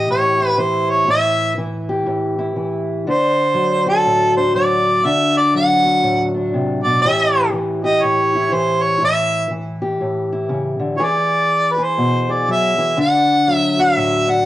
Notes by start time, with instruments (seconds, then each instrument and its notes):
Already playing: steel-string acoustic guitar E3 E4 G4
0.10 steel-string acoustic guitar A2, harmonica C#5
0.40 steel-string acoustic guitar E4
0.48 harmonica B4
0.58 steel-string acoustic guitar E3, harmonica C5
0.90 harmonica C#5
1.07 steel-string acoustic guitar A2 E4, harmonica E5
1.58 steel-string acoustic guitar E3
1.89 steel-string acoustic guitar G4
2.06 steel-string acoustic guitar A2
2.38 steel-string acoustic guitar E4
2.56 steel-string acoustic guitar E3
3.07 steel-string acoustic guitar D3 D4, harmonica C5
3.54 steel-string acoustic guitar F#3
3.86 steel-string acoustic guitar F#4, harmonica A4
4.05 steel-string acoustic guitar A2
4.36 steel-string acoustic guitar D4, harmonica C5
4.55 steel-string acoustic guitar F#3, harmonica D5
5.05 steel-string acoustic guitar D3 D4, harmonica E5
5.37 harmonica D5
5.54 steel-string acoustic guitar F#3, harmonica F#5
5.85 steel-string acoustic guitar F#4
6.03 steel-string acoustic guitar A2
6.34 steel-string acoustic guitar D4
6.54 steel-string acoustic guitar C3
6.84 steel-string acoustic guitar B2, harmonica D5
7.02 steel-string acoustic guitar A2 E3 C#4 E4, harmonica E5
7.06 steel-string acoustic guitar G4
7.53 steel-string acoustic guitar E3
7.84 steel-string acoustic guitar G4, harmonica D#5
8.03 steel-string acoustic guitar A2, harmonica C#5
8.35 steel-string acoustic guitar E4
8.52 steel-string acoustic guitar E3, harmonica C5
8.82 harmonica C#5
9.00 steel-string acoustic guitar A2 E4
9.05 harmonica E5
9.51 steel-string acoustic guitar E3
9.82 steel-string acoustic guitar G4
10.01 steel-string acoustic guitar A2
10.33 steel-string acoustic guitar E4
10.49 steel-string acoustic guitar C#3
10.80 steel-string acoustic guitar D3
10.97 steel-string acoustic guitar E3 G#4, harmonica C#5
11.04 harmonica D5
11.72 harmonica B4
11.78 steel-string acoustic guitar G#4
11.83 harmonica C5
11.98 steel-string acoustic guitar B2
12.29 steel-string acoustic guitar G#4, harmonica D5
12.48 steel-string acoustic guitar F#3, harmonica E5
12.78 steel-string acoustic guitar E3
12.97 steel-string acoustic guitar D3 D4, harmonica F#5
13.47 steel-string acoustic guitar F#3
13.56 harmonica E5
13.79 steel-string acoustic guitar F#4, harmonica E5
13.96 steel-string acoustic guitar A2
14.27 steel-string acoustic guitar D4, harmonica F#5